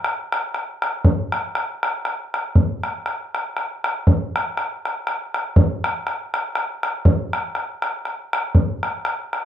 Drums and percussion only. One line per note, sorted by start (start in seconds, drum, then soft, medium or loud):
0.04 bodhran medium
0.32 bodhran medium
0.54 bodhran medium
0.82 bodhran medium
1.05 bodhran medium
1.32 bodhran medium
1.55 bodhran medium
1.83 bodhran medium
2.05 bodhran medium
2.34 bodhran medium
2.55 bodhran medium
2.84 bodhran medium
3.06 bodhran medium
3.35 bodhran medium
3.57 bodhran medium
3.84 bodhran medium
4.07 bodhran medium
4.36 bodhran medium
4.57 bodhran medium
4.85 bodhran medium
5.07 bodhran medium
5.34 bodhran medium
5.56 bodhran medium
5.84 bodhran medium
6.07 bodhran medium
6.34 bodhran medium
6.55 bodhran medium
6.83 bodhran medium
7.05 bodhran medium
7.33 bodhran medium
7.55 bodhran medium
7.82 bodhran medium
8.05 bodhran medium
8.33 bodhran medium
8.55 bodhran medium
8.83 bodhran medium
9.05 bodhran medium
9.33 bodhran medium